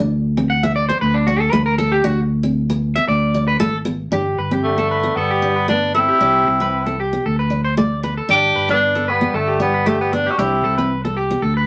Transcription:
0.00 0.90 D2 medium
0.00 0.15 D4 medium
0.37 0.54 C4 medium
0.50 0.63 F#5 medium
0.63 0.80 B3 medium
0.63 0.75 E5 medium
0.76 0.88 D5 medium
0.89 1.06 B3 medium
0.89 1.01 C5 medium
1.01 1.48 D2 loud
1.01 1.15 B4 medium
1.14 1.26 D4 medium
1.27 1.44 D4 medium
1.27 1.40 F#4 medium
1.40 1.52 A4 medium
1.52 1.99 D2 medium
1.52 1.69 A3 medium
1.52 1.65 B4 loud
1.66 1.78 A#4 medium
1.78 1.95 B3 medium
1.78 1.92 A4 loud
1.92 2.04 G4 medium
2.04 2.97 D2 loud
2.04 2.21 D4 medium
2.04 2.20 F#4 medium
2.43 2.60 C4 medium
2.70 2.86 B3 medium
2.96 3.12 B3 medium
2.96 3.08 E5 loud
3.08 3.55 D2 loud
3.08 3.45 D5 medium
3.34 3.51 D4 medium
3.48 3.60 B4 medium
3.60 4.07 G#1 medium
3.60 3.76 A3 medium
3.60 3.76 A4 medium
3.85 4.02 B3 medium
4.12 4.36 G1 medium
4.12 4.28 D4 medium
4.12 4.37 G4 medium
4.38 5.08 G1 medium
4.38 4.51 B4 medium
4.51 4.68 C4 medium
4.51 4.77 G4 medium
4.64 5.20 D3 medium
4.64 5.17 A3 medium
4.78 4.94 B3 medium
4.78 4.90 A4 medium
4.91 5.16 B4 medium
5.03 5.20 B3 medium
5.16 6.09 G1 medium
5.16 5.70 G3 medium
5.16 5.68 B3 medium
5.16 5.30 A4 medium
5.31 5.55 G4 medium
5.42 5.59 D4 medium
5.56 5.68 B4 medium
5.68 5.85 A3 medium
5.68 5.94 B3 medium
5.68 5.93 D4 medium
5.68 muted clean electric guitar stroke medium
5.94 6.11 B3 medium
5.94 6.97 C4 medium
5.94 6.95 E4 loud
5.94 6.08 A4 medium
6.08 6.20 G4 medium
6.21 6.44 C2 medium
6.21 6.37 D4 medium
6.21 6.46 G4 medium
6.47 7.17 C2 medium
6.47 muted clean electric guitar stroke medium
6.60 6.77 C4 medium
6.60 6.86 B4 medium
6.86 7.03 B3 medium
6.86 6.98 A4 medium
7.00 7.24 G4 medium
7.13 7.29 B3 medium
7.26 8.18 D2 medium
7.26 7.39 A4 medium
7.39 7.64 B4 medium
7.50 7.67 D4 medium
7.65 7.77 C5 medium
7.77 7.94 A3 medium
7.77 8.03 D5 medium
8.03 8.20 B3 medium
8.03 8.17 B4 medium
8.17 8.29 A4 medium
8.29 8.53 G1 medium
8.29 8.46 D4 medium
8.29 8.67 G4 loud
8.29 muted clean electric guitar stroke medium
8.33 8.69 D4 medium
8.56 9.25 G1 medium
8.56 8.69 B4 medium
8.69 8.86 G3 medium
8.69 9.13 B3 medium
8.69 8.94 D4 medium
8.69 9.11 D4 medium
8.95 9.12 B3 medium
8.95 9.07 A4 medium
9.08 9.39 G3 medium
9.08 9.37 B3 medium
9.08 9.33 B4 medium
9.21 9.38 B3 medium
9.34 10.27 G1 medium
9.34 9.62 D3 medium
9.34 9.61 A3 medium
9.34 9.47 A4 medium
9.48 9.72 G4 medium
9.60 9.88 G3 medium
9.60 9.89 B3 medium
9.60 9.76 D4 medium
9.74 9.86 B4 medium
9.86 10.00 D3 medium
9.86 10.03 A3 medium
9.86 10.00 A3 medium
9.86 10.11 G4 medium
10.01 10.15 G3 medium
10.01 10.15 B3 medium
10.12 10.29 B3 medium
10.12 10.35 B3 medium
10.12 10.32 D4 medium
10.12 muted clean electric guitar stroke medium
10.26 10.37 G4 medium
10.31 10.41 D4 soft
10.31 10.41 F#4 medium
10.38 10.61 C2 medium
10.38 10.91 C4 medium
10.38 10.55 D4 medium
10.38 10.91 E4 medium
10.38 10.63 G4 medium
10.64 11.34 C2 medium
10.64 10.77 A4 medium
10.78 10.95 C4 medium
10.78 11.03 B4 medium
11.05 11.21 B3 medium
11.05 11.16 A4 medium
11.17 11.41 G4 medium
11.31 11.47 B3 medium
11.42 11.67 D2 medium
11.42 11.55 A4 medium
11.57 11.67 B4 medium

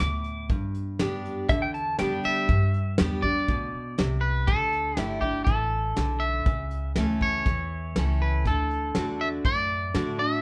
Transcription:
0.00 0.49 D2 medium
0.00 0.48 A2 medium
0.00 0.49 D6 loud
0.24 closed hi-hat medium
0.49 0.99 G2 medium
0.49 1.45 G2 medium
0.49 kick loud
0.49 closed hi-hat medium
0.74 closed hi-hat medium
0.99 1.49 F#2 medium
0.99 1.47 B3 medium
0.99 1.48 D4 medium
0.99 1.48 G4 medium
0.99 snare loud
0.99 closed hi-hat medium
1.25 closed hi-hat medium
1.49 1.98 E2 medium
1.49 2.44 D3 loud
1.49 1.62 E5 loud
1.49 kick loud
1.49 closed hi-hat medium
1.62 1.74 G5 medium
1.74 1.99 A5 medium
1.74 closed hi-hat medium
1.99 2.24 F#2 medium
1.99 2.47 G3 loud
1.99 2.47 B3 medium
1.99 2.47 D4 medium
1.99 2.47 G4 medium
1.99 2.48 G5 loud
1.99 snare loud
1.99 closed hi-hat medium
2.23 2.96 E5 loud
2.23 muted upright bass stroke soft
2.23 closed hi-hat medium
2.49 2.98 G2 medium
2.49 3.44 G2 medium
2.49 kick loud
2.49 closed hi-hat medium
2.74 closed hi-hat medium
2.98 3.48 E2 medium
2.98 3.23 G3 medium
2.98 3.23 B3 medium
2.98 3.23 D4 medium
2.98 3.22 G4 loud
2.98 snare loud
3.22 3.48 D4 medium
3.22 3.48 G4 medium
3.22 4.21 D5 loud
3.22 kick medium
3.48 3.72 D2 medium
3.48 3.96 B2 medium
3.48 kick loud
3.48 closed hi-hat medium
3.75 muted upright bass stroke soft
3.98 4.47 C2 medium
3.98 4.46 C3 medium
3.98 snare loud
3.98 closed hi-hat medium
4.21 4.48 B4 medium
4.47 4.96 D2 medium
4.47 4.96 D3 medium
4.47 4.99 A4 medium
4.47 kick loud
4.47 closed hi-hat medium
4.72 closed hi-hat medium
4.97 5.46 G1 medium
4.97 5.21 D3 medium
4.97 5.22 A3 medium
4.97 5.22 D4 medium
4.97 5.21 E4 medium
4.97 5.18 G4 medium
4.97 snare loud
4.97 closed hi-hat medium
5.21 5.47 D4 soft
5.21 5.46 E4 medium
5.21 5.44 G4 medium
5.21 kick medium
5.44 5.95 A1 medium
5.44 5.95 E3 medium
5.44 6.23 A4 medium
5.44 kick loud
5.44 closed hi-hat medium
5.96 6.46 B1 loud
5.96 6.44 D3 medium
5.96 snare loud
5.96 closed hi-hat medium
6.20 6.92 E5 loud
6.46 6.95 C#2 medium
6.46 7.41 C#3 medium
6.46 kick loud
6.46 closed hi-hat medium
6.71 closed hi-hat medium
6.96 7.45 D2 medium
6.96 7.44 E3 medium
6.96 7.44 A3 medium
6.96 7.45 C#4 medium
6.96 7.45 A4 medium
6.96 snare loud
6.96 closed hi-hat medium
7.21 8.24 C#5 medium
7.21 kick medium
7.46 7.94 E2 loud
7.46 7.95 E3 loud
7.46 kick loud
7.46 closed hi-hat medium
7.96 8.45 C#2 loud
7.96 8.43 E3 medium
7.96 8.44 A3 medium
7.96 8.44 C#4 medium
7.96 8.44 A4 loud
7.96 snare loud
7.96 closed hi-hat medium
8.22 8.45 B4 medium
8.46 8.94 D2 medium
8.46 8.95 D3 medium
8.46 9.23 A4 medium
8.46 kick loud
8.46 closed hi-hat medium
8.70 closed hi-hat medium
8.95 9.44 E2 medium
8.95 9.43 D3 medium
8.95 9.43 A3 medium
8.95 9.44 D4 medium
8.95 9.44 F#4 medium
8.95 snare loud
8.95 closed hi-hat medium
9.21 9.28 E5 loud
9.45 9.93 F#2 medium
9.45 10.40 A2 medium
9.45 10.19 D5 loud
9.45 kick loud
9.45 closed hi-hat medium
9.94 10.42 A2 medium
9.94 10.19 D3 medium
9.94 10.19 A3 medium
9.94 10.19 D4 medium
9.94 10.18 F#4 medium
9.94 snare loud
9.94 closed hi-hat medium
10.19 10.42 D4 soft
10.19 10.42 F#4 medium
10.19 10.42 E5 medium

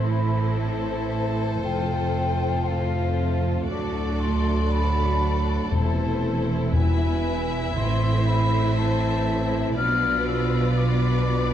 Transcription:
0.00 1.59 A1 soft
0.00 0.56 A2 soft
0.00 1.60 A2 soft
0.00 0.56 E3 soft
0.00 0.56 A3 soft
0.00 0.57 C4 soft
0.00 1.59 E4 soft
0.00 3.65 A4 soft
0.00 3.65 C5 medium
0.09 0.59 B5 medium
0.60 1.61 A2 soft
0.60 1.62 E3 soft
0.60 1.61 A3 soft
0.60 1.61 C4 soft
0.60 1.61 A5 medium
1.63 3.65 F1 soft
1.63 3.65 F2 medium
1.63 2.64 A2 soft
1.63 2.65 F3 soft
1.63 2.64 A3 soft
1.63 2.64 C4 soft
1.63 3.65 F4 soft
1.63 2.69 G5 medium
2.66 3.67 A2 soft
2.66 3.67 F3 medium
2.66 3.67 A3 soft
2.66 3.67 C4 soft
2.66 3.69 F5 medium
3.68 5.69 D2 medium
3.68 5.68 A2 medium
3.68 5.69 F#3 medium
3.68 5.69 A3 soft
3.68 5.73 D4 soft
3.68 5.69 F#4 soft
3.68 6.71 A4 medium
3.68 5.73 D5 medium
3.68 4.22 D6 medium
4.20 4.73 C6 medium
4.72 5.72 B5 medium
5.72 7.72 E1 medium
5.72 6.20 E2 medium
5.72 7.72 E2 medium
5.72 6.72 C3 medium
5.72 6.73 E3 medium
5.72 6.72 A3 soft
5.72 6.72 E4 medium
5.72 9.78 E4 medium
5.72 6.75 C5 medium
5.72 6.45 A5 medium
6.73 7.21 E2 medium
6.73 7.59 B2 medium
6.73 7.59 E3 medium
6.73 7.58 B3 medium
6.73 7.58 E4 medium
6.73 7.76 B4 medium
6.73 9.77 E5 medium
6.73 7.72 G#5 medium
7.75 9.73 A1 medium
7.75 8.23 A2 medium
7.75 8.75 A2 medium
7.75 9.74 A2 medium
7.75 8.75 E3 medium
7.75 8.75 C4 medium
7.75 8.75 E4 medium
7.75 9.78 C5 medium
7.75 8.26 C6 medium
8.27 8.76 B5 medium
8.76 9.76 A2 medium
8.76 9.76 E3 medium
8.76 9.75 C4 medium
8.76 9.75 E4 medium
8.76 9.75 A5 medium
9.76 11.54 B1 medium
9.76 11.54 B2 medium
9.76 10.76 B2 medium
9.76 10.75 F3 medium
9.76 10.77 B3 medium
9.76 10.76 D4 medium
9.76 11.54 F4 medium
9.76 11.54 B4 medium
9.76 11.54 D5 medium
9.76 10.26 F6 medium
10.27 10.79 E6 medium
10.77 11.54 B2 medium
10.77 11.54 F3 medium
10.77 11.54 B3 medium
10.77 11.54 D4 medium
10.77 11.54 D6 medium

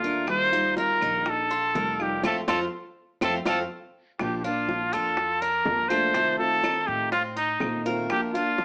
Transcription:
0.00 0.95 D#2 medium
0.00 0.25 F4 medium
0.00 0.27 F4 medium
0.00 high bongo soft
0.04 0.28 A3 medium
0.04 0.27 D4 medium
0.04 0.51 A#4 medium
0.27 0.51 D#3 medium
0.27 0.52 G3 medium
0.27 0.52 D#4 medium
0.27 0.51 F4 medium
0.27 0.74 C5 loud
0.27 high bongo medium
0.27 claves medium
0.52 0.76 G3 medium
0.52 0.76 D#4 medium
0.52 0.77 D#4 medium
0.52 0.76 F4 medium
0.76 1.24 D#3 medium
0.76 1.24 G3 medium
0.76 1.25 D#4 medium
0.76 1.01 F4 medium
0.76 1.25 F4 medium
0.76 1.31 A#4 loud
0.76 high bongo medium
1.01 1.71 A#1 medium
1.01 1.49 D#4 medium
1.01 high bongo soft
1.01 claves medium
1.25 muted steel-string acoustic guitar stroke medium
1.25 high bongo medium
1.29 2.03 A4 loud
1.50 1.74 F4 medium
1.50 high bongo soft
1.74 2.21 F1 medium
1.74 1.98 D#3 soft
1.74 1.99 G3 soft
1.74 1.99 D#4 medium
1.74 1.98 F4 medium
1.74 2.23 A#4 medium
1.74 high bongo soft
1.74 low bongo medium
1.99 2.24 G3 medium
1.99 2.23 D#4 medium
1.99 2.23 F4 medium
1.99 2.25 G4 medium
1.99 high bongo soft
1.99 claves medium
2.23 2.42 F2 medium
2.23 2.40 A3 medium
2.23 2.40 A3 loud
2.23 2.40 C4 medium
2.23 2.40 F4 medium
2.23 2.40 F4 loud
2.23 2.37 A4 loud
2.23 high bongo loud
2.23 claves medium
2.48 2.67 F2 medium
2.48 2.64 A3 medium
2.48 2.65 A3 medium
2.48 2.64 C4 medium
2.48 2.65 C4 medium
2.48 2.64 F4 loud
2.48 2.65 F4 medium
2.48 2.60 A4 loud
2.48 high bongo loud
2.48 claves loud
3.21 3.41 F2 loud
3.21 3.38 A3 medium
3.21 3.37 C4 loud
3.21 3.38 C4 medium
3.21 3.38 F4 medium
3.21 3.35 A4 medium
3.21 high bongo medium
3.21 claves medium
3.45 3.65 F2 medium
3.45 3.62 A3 medium
3.45 3.62 C4 medium
3.45 3.62 F4 loud
3.45 3.62 F4 medium
3.45 3.59 A4 medium
3.45 high bongo loud
3.45 claves medium
4.19 4.89 A#1 medium
4.19 4.43 F3 medium
4.19 4.44 A#3 medium
4.19 4.44 D4 medium
4.19 4.43 F4 medium
4.19 4.38 G4 medium
4.19 high bongo medium
4.19 claves medium
4.38 4.46 G4 medium
4.44 4.68 A#3 soft
4.44 4.92 D4 medium
4.44 4.68 D4 medium
4.44 4.68 F4 medium
4.44 4.94 F4 loud
4.69 5.17 F3 soft
4.69 5.17 A#3 medium
4.69 5.17 D4 medium
4.69 5.18 F4 medium
4.69 high bongo medium
4.93 5.63 F2 medium
4.93 5.40 F4 medium
4.93 5.43 A4 loud
4.93 high bongo soft
4.93 claves medium
5.17 muted steel-string acoustic guitar stroke medium
5.17 high bongo medium
5.41 5.89 D4 medium
5.41 5.90 A#4 loud
5.41 high bongo soft
5.66 6.10 F2 medium
5.66 5.90 F3 soft
5.66 5.90 A#3 soft
5.66 5.90 D4 medium
5.66 5.89 F4 medium
5.66 high bongo soft
5.66 low bongo medium
5.89 6.13 A3 medium
5.89 6.15 D4 medium
5.89 6.14 F4 medium
5.89 6.38 C5 loud
5.89 high bongo soft
5.89 claves medium
5.93 6.15 A#3 medium
6.14 6.38 C3 medium
6.14 6.39 D#3 medium
6.14 6.62 A3 medium
6.14 6.39 A3 medium
6.14 6.39 C4 medium
6.14 6.38 F4 medium
6.14 high bongo medium
6.38 6.62 D#3 medium
6.38 6.63 A3 medium
6.38 6.63 C4 medium
6.38 6.63 F4 medium
6.38 6.88 A4 loud
6.63 7.12 D#3 medium
6.63 7.12 A3 medium
6.63 7.12 C4 medium
6.63 7.11 D#4 medium
6.63 7.13 F4 medium
6.63 high bongo medium
6.63 claves medium
6.87 7.58 A2 medium
6.87 7.11 G4 medium
6.87 high bongo soft
7.12 7.36 C4 medium
7.12 7.23 F4 medium
7.12 muted steel-string acoustic guitar stroke medium
7.12 high bongo medium
7.36 7.84 D#4 medium
7.36 7.82 D#4 medium
7.36 high bongo soft
7.60 8.05 A#2 medium
7.60 7.85 D#3 medium
7.60 7.86 A3 soft
7.60 7.86 C4 medium
7.60 7.85 F4 medium
7.60 high bongo soft
7.60 low bongo medium
7.60 claves medium
7.85 8.09 D#3 medium
7.85 8.10 A3 medium
7.85 8.10 C4 medium
7.85 8.09 F4 medium
7.85 8.33 A#4 medium
7.85 high bongo soft
8.09 8.33 F3 medium
8.09 8.34 A#3 medium
8.09 8.34 D4 medium
8.09 8.33 F4 medium
8.09 8.21 G4 medium
8.09 high bongo medium
8.09 claves medium
8.34 8.57 A#3 medium
8.34 8.65 D4 medium
8.34 8.58 D4 medium
8.34 8.65 F4 medium
8.34 8.58 F4 medium
8.58 8.65 F3 medium
8.58 8.65 A#3 medium
8.58 8.65 D4 medium
8.58 8.65 F4 medium
8.58 high bongo medium

